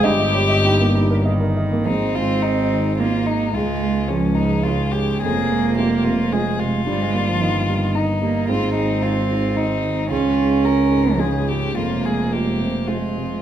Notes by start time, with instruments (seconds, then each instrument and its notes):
0.03 double bass G1, felt piano G2 D#5, ambient pad A#3 D#4 D#5, violin G4, cello G4
0.19 felt piano D#5
0.34 felt piano C#5
0.49 felt piano D#5
0.64 felt piano D#4, cello G4
0.80 felt piano A#3
0.95 felt piano D#4
1.10 felt piano A#4
1.25 cello D#3, felt piano D#5
1.40 felt piano A#4
1.57 felt piano D#5
1.72 felt piano A#3
1.86 double bass G#1, felt piano G#2, ambient pad G#3 D#4 D#5, cello C4, violin D#4
2.15 felt piano G#3, violin F4
2.42 violin D#4, felt piano D#4
2.72 felt piano D#3
2.98 cello A#3, felt piano D#4, violin F4
3.26 felt piano D#3, violin D#4
3.54 double bass C#2, felt piano C#2, cello G#3, violin F4, ambient pad F4 C#5
3.83 felt piano G#3
4.08 cello F3, violin C#4, felt piano F4
4.35 felt piano G#2, violin D#4
4.63 cello C#3, violin F4, felt piano F4
4.91 felt piano G#2, violin G4
5.21 double bass F1, felt piano F2, cello A#3, violin G#4, ambient pad C5
5.51 felt piano G#3
5.78 felt piano F4, violin G4
6.04 felt piano C3, violin F4
6.32 cello G#3, felt piano F4, violin G#4
6.59 felt piano C3, violin F4
6.86 double bass G1, felt piano G2, cello G3, ambient pad A#3 D#4 D#5
7.02 cello G#3
7.14 cello G3, felt piano A#3
7.29 cello F3
7.41 cello D#3, felt piano D#4
7.68 felt piano G3
7.94 felt piano D#4, violin D#4
8.22 felt piano G3, cello A#3
8.48 double bass G#1, felt piano G#2, ambient pad G#3, cello C4, violin F4
8.74 felt piano G#3, violin D#4
9.03 felt piano D#4, violin F4
9.32 felt piano D#3
9.56 violin D#4, felt piano D#4
9.84 felt piano D#3
10.09 felt piano C#2, double bass C#2, cello C#4, ambient pad F4 C#5, violin F4
10.38 felt piano G#3
10.65 felt piano F4, violin A#4
10.92 felt piano G#2
11.19 cello C#3, felt piano F4, violin G#4
11.47 felt piano G#2, violin G4
11.77 double bass F1, felt piano F2, cello A#3, violin F4, ambient pad C5
12.05 felt piano G#3, violin G#4
12.32 felt piano F4, violin G4
12.61 felt piano C3
12.88 cello G#3, violin F4, felt piano F4
13.18 felt piano C3